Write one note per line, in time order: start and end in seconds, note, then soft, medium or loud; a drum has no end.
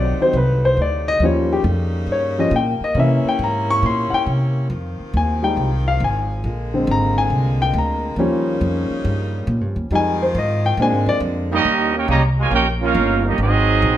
0.00 0.18 B1 medium
0.00 1.19 C3 medium
0.00 0.18 D#3 medium
0.00 0.18 F#3 soft
0.00 1.19 F#3 medium
0.00 1.20 A3 medium
0.00 0.18 C4 medium
0.00 1.18 D#4 medium
0.00 0.21 D5 medium
0.19 0.34 D#3 soft
0.19 0.34 F#3 soft
0.19 0.34 C4 soft
0.19 0.35 C5 medium
0.19 muted upright bass stroke soft
0.33 0.76 C2 medium
0.33 0.64 B4 medium
0.65 0.78 C5 medium
0.77 1.19 D2 medium
0.82 1.08 D5 medium
1.08 1.22 D#5 loud
1.20 1.63 D#2 medium
1.20 2.77 C#3 medium
1.20 1.55 F3 medium
1.20 2.77 G3 medium
1.20 1.56 G3 soft
1.20 4.67 A#3 medium
1.20 1.56 C#4 medium
1.20 2.77 D#4 medium
1.25 1.52 C#5 medium
1.53 1.61 G4 medium
1.64 2.06 F2 loud
2.07 2.50 G2 medium
2.12 2.39 C#5 medium
2.39 2.51 F3 soft
2.39 2.51 G3 soft
2.39 2.52 C#4 medium
2.39 2.53 D#5 medium
2.51 2.79 A#2 loud
2.56 2.83 G5 medium
2.81 2.97 D#5 medium
2.81 muted upright bass stroke soft
2.94 4.67 C3 medium
2.94 3.23 C3 medium
2.94 3.30 E3 soft
2.94 3.30 A#3 soft
2.94 4.67 C#4 medium
2.94 3.30 C#4 medium
2.94 4.67 E4 medium
3.00 3.26 E5 medium
3.25 3.41 G5 medium
3.25 muted upright bass stroke soft
3.39 3.81 G#2 medium
3.44 3.70 A#5 medium
3.70 3.83 C#6 loud
3.82 4.10 A#2 medium
3.82 4.13 C6 medium
4.10 4.12 F#5 medium
4.10 4.22 G5 medium
4.10 muted upright bass stroke soft
4.26 4.69 C3 medium
4.69 4.97 F2 medium
4.69 6.42 D#3 medium
4.69 6.42 F3 medium
4.69 6.42 C4 medium
4.69 6.42 F4 medium
5.00 muted upright bass stroke soft
5.13 5.56 D#2 medium
5.13 5.44 G#5 medium
5.42 5.67 G3 medium
5.42 5.68 G#3 soft
5.42 5.68 D#4 medium
5.42 5.84 G5 medium
5.57 5.99 C2 medium
5.88 6.01 F5 medium
6.00 6.43 G#1 medium
6.04 6.71 G#5 medium
6.43 6.86 A#1 medium
6.43 8.16 D3 medium
6.43 8.16 G#3 medium
6.43 9.74 A#3 medium
6.43 8.16 F4 medium
6.74 8.14 D3 medium
6.74 8.14 G#3 soft
6.74 8.15 C4 medium
6.87 7.29 G#1 loud
6.91 7.18 A#5 medium
7.18 7.58 G#5 medium
7.30 7.73 C2 medium
7.62 7.75 G5 medium
7.74 8.16 D2 loud
7.78 8.45 A#5 medium
8.16 8.59 D#2 medium
8.16 9.74 C#3 medium
8.16 9.88 F3 medium
8.16 9.74 G3 medium
8.16 9.88 G3 medium
8.16 9.89 C#4 medium
8.16 9.74 D#4 medium
8.61 8.88 F2 medium
8.90 muted upright bass stroke soft
9.05 9.46 G2 loud
9.47 9.61 A#2 loud
9.61 9.75 G2 medium
9.76 9.90 D#2 medium
9.91 10.33 F2 medium
9.91 10.78 D#3 medium
9.91 10.77 F3 medium
9.91 10.25 G3 medium
9.91 10.25 G#3 soft
9.91 10.77 C4 medium
9.91 10.26 D#4 medium
9.91 11.63 F4 loud
9.95 10.22 G#5 medium
10.22 10.35 C5 medium
10.35 10.77 G#2 medium
10.35 10.65 D#5 medium
10.66 10.79 G5 medium
10.77 10.92 A#2 medium
10.77 11.64 D3 medium
10.77 11.64 G#3 medium
10.77 11.48 G#3 medium
10.77 11.64 A#3 medium
10.77 11.49 C4 soft
10.77 11.49 D4 medium
10.82 11.09 G#5 medium
10.92 11.06 G#2 medium
11.06 11.20 F2 medium
11.06 11.17 D5 medium
11.20 11.63 F2 loud
11.51 11.92 G3 medium
11.51 11.92 A#3 medium
11.51 11.93 C#4 medium
11.51 11.91 D#4 medium
11.51 11.93 G4 medium
11.51 11.93 A#4 medium
11.51 11.93 D#5 loud
11.65 12.07 D#2 medium
11.93 12.06 A#3 medium
11.93 12.08 C#4 medium
11.93 12.08 G4 medium
11.93 12.10 A#4 medium
11.93 12.10 G5 loud
11.97 12.10 D#4 medium
11.97 12.08 C#5 medium
12.07 12.51 C2 medium
12.07 12.21 C#3 loud
12.07 12.21 G3 loud
12.07 12.21 A#3 loud
12.07 12.23 G4 loud
12.07 12.22 C#5 loud
12.07 12.23 D#5 medium
12.07 12.23 A#5 loud
12.37 12.51 G#3 medium
12.37 12.53 A#4 medium
12.41 12.53 F4 medium
12.41 12.53 C#5 medium
12.41 12.53 G#5 loud
12.51 12.94 A#1 medium
12.51 12.64 A#3 medium
12.51 12.64 C#4 medium
12.51 12.67 D#4 medium
12.51 12.64 G4 medium
12.51 12.67 A#4 loud
12.51 12.67 C#5 medium
12.51 12.67 G5 loud
12.80 13.21 A#3 medium
12.80 13.21 C#4 loud
12.80 13.21 F4 loud
12.85 13.24 D#4 medium
12.85 13.24 A#4 medium
12.85 13.24 C#5 medium
12.85 13.24 F5 loud
12.95 13.37 G1 loud
13.24 13.39 G3 medium
13.24 13.39 A#3 medium
13.24 13.37 D#4 medium
13.24 13.40 G4 medium
13.28 13.41 C#4 medium
13.28 13.41 A#4 medium
13.28 13.40 D#5 loud
13.38 13.81 G#1 medium
13.38 13.97 F#3 medium
13.38 13.97 C4 medium
13.38 13.97 C4 loud
13.38 13.97 D#4 medium
13.38 13.97 G#4 loud
13.38 13.97 D#5 loud
13.42 13.97 F#4 medium
13.82 13.97 A#1 loud